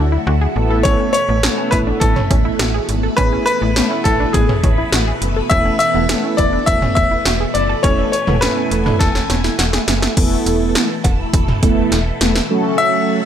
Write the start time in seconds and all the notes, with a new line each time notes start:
Already playing: D2 D3 F#3 A3 E4 F#4 E5
0.12 E4
0.27 D2 F#4
0.41 G#4
0.56 A1 B2 E3 A3 B3 E4 A4 B4
0.71 A4
0.83 C#4 C#5, kick, closed hi-hat
1.00 C#4
1.13 C#5, closed hi-hat
1.29 A1 A3 B3 E4 A4
1.43 A3 B3 C#4 E4 A4, snare, closed hi-hat
1.58 C#4
1.71 A1 E4 B4, kick, closed hi-hat
1.87 D4
2.00 A1 A4, kick, closed hi-hat
2.16 C#4, mid tom
2.31 A1 C#4, kick, closed hi-hat
2.45 E4
2.59 A1 F#4, snare, closed hi-hat
2.74 G#4
2.89 G#1, closed hi-hat
3.03 A4
3.17 A1 A3 B3 C#4 E4 G#4 B4, kick, closed hi-hat
3.33 C#4
3.46 B4, closed hi-hat
3.62 A1 A3 B3 E4 A4
3.76 A3 B3 C#4 E4 A4, snare, closed hi-hat
3.91 C#4
4.04 A1 E4 A4, kick, closed hi-hat
4.20 D4
4.33 A1 G#4, kick, closed hi-hat
4.49 C#4, mid tom
4.64 A1 C#4, kick, closed hi-hat
4.78 E4
4.92 A1 F#4, snare, closed hi-hat
5.07 G#4
5.22 F#1, closed hi-hat
5.36 A4
5.50 E1 A3 B3 C#4 E4 A4 E5, kick, closed hi-hat
5.65 C#4
5.79 E5, closed hi-hat
5.95 E1 A3 B3 E4 A4
6.09 A3 B3 C#4 E4 A4, snare, closed hi-hat
6.24 C#4
6.37 E1 E4 D5, kick, closed hi-hat
6.53 D4
6.66 E1 E5, kick, closed hi-hat
6.82 C#4, mid tom
6.95 E1 C#4 E5, kick, closed hi-hat
7.11 E4
7.25 E1 F#4, snare, closed hi-hat
7.40 G#4
7.54 F#1 D5, closed hi-hat
7.69 A4
7.83 E1 A3 B3 C#4 E4 A4 C#5 G#5, kick, closed hi-hat
7.99 C#4
8.12 C#5, closed hi-hat
8.27 E1 A3 B3 E4 A4, mid tom
8.41 A3 B3 C#4 E4 A4 B4, snare, closed hi-hat
8.57 C#4
8.71 E1 E4, closed hi-hat
8.86 D4, mid tom
8.99 E1 A4, kick, snare, closed hi-hat
9.15 C#4, snare
9.30 E1 C#4, snare, closed hi-hat
9.44 E4, snare
9.59 E1 F#4, snare, closed hi-hat
9.73 G#4, snare
9.88 F#1, snare, closed hi-hat
10.02 A4, snare
10.17 E1 B2 E3 A3 B3 E4 A4, kick, closed hi-hat, crash
10.46 E1, closed hi-hat
10.75 snare, closed hi-hat
11.04 E1, kick, closed hi-hat, cowbell
11.33 E1, kick, closed hi-hat
11.48 mid tom
11.63 E1 A3 B3 E4 A4, kick, closed hi-hat
11.92 E1, snare, closed hi-hat
12.21 E1 A3 B3 E4 A4, snare, closed hi-hat
12.35 snare
12.50 C#3 F#3 A3 C#4 F#4 A4
12.78 E5